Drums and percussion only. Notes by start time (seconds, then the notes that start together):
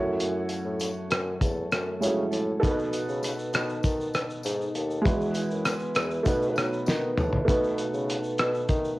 0.20 closed hi-hat, tambourine
0.49 closed hi-hat, tambourine
0.80 closed hi-hat, tambourine
1.11 cross-stick, closed hi-hat, tambourine
1.41 kick, closed hi-hat, tambourine
1.71 cross-stick, closed hi-hat, tambourine
2.02 closed hi-hat, tambourine
2.32 closed hi-hat, tambourine
2.63 kick, closed hi-hat, shaker
2.79 shaker
2.93 closed hi-hat, tambourine, shaker
3.09 shaker
3.23 closed hi-hat, tambourine, shaker
3.39 shaker
3.53 cross-stick, closed hi-hat, tambourine, shaker
3.69 shaker
3.83 kick, closed hi-hat, tambourine, shaker
4.01 shaker
4.14 cross-stick, closed hi-hat, tambourine, shaker
4.30 shaker
4.43 closed hi-hat, tambourine, shaker
4.61 shaker
4.75 closed hi-hat, shaker
4.91 shaker
5.05 kick, closed hi-hat, shaker
5.21 shaker
5.34 closed hi-hat, tambourine, shaker
5.51 shaker
5.65 cross-stick, closed hi-hat, tambourine, shaker
5.80 shaker
5.95 cross-stick, closed hi-hat, tambourine, shaker
6.11 shaker
6.25 kick, closed hi-hat, tambourine, shaker
6.42 shaker
6.56 cross-stick, closed hi-hat, tambourine, shaker
6.73 shaker
6.86 snare, tambourine
7.17 mid tom, tambourine
7.33 floor tom
7.48 kick, closed hi-hat, shaker
7.64 shaker
7.78 closed hi-hat, shaker
7.94 shaker
8.10 closed hi-hat, shaker
8.24 shaker
8.38 cross-stick, closed hi-hat, shaker
8.54 shaker
8.69 kick, closed hi-hat, shaker
8.85 shaker